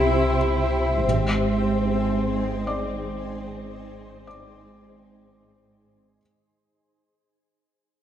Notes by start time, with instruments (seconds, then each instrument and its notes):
Already playing: sub bass C2, cello section C3, violin section E4, ambient pad G4 C5 E5, felt piano C6
1.02 sub bass G#1, double bass section G#1, cello section G#2, violin section C4, ambient pad D#4 G#4 C5
2.67 felt piano D5 D6
4.27 felt piano D5 D6